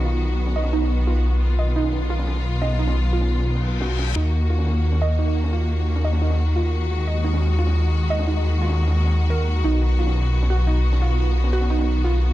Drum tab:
HH |x-x-x-x-x-xxxxx-|x-x-x-x-x-x-x-x-|xx-xx-x-x-xx--x-|x-x-x-x-x-x-x-x-|
SD |-----o-o-o------|-----oo--ooo--o-|-o---o-o-o--o-o-|-----oo--o-----o|

HH |x-x-x-x-x-xxxxx-|x-x-x-x-x-x-x-x-|x-x-x-x-x-xxxxx-|x-x-x-x-x-x-x-x-|
SD |-----o-o-o------|-----oo--o-----o|-----o-o-o------|-----oo--o-----o|

HH |x-x-x-x-x-xxxxx-|
SD |-----o-o-o------|